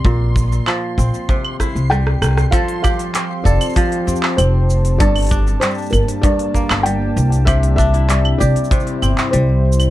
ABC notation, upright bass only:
X:1
M:4/4
L:1/16
Q:1/4=97
K:F
V:1 name="Upright bass" clef=bass
B,,,3 z3 B,,, z4 C,,2 z C,, z | z6 F,,, z3 F,, z F,,,4 | G,,,3 z3 G,,, z4 G,,,2 z C,,2- | C,,4- C,, z C,, z3 G,,, z C,,3 z |]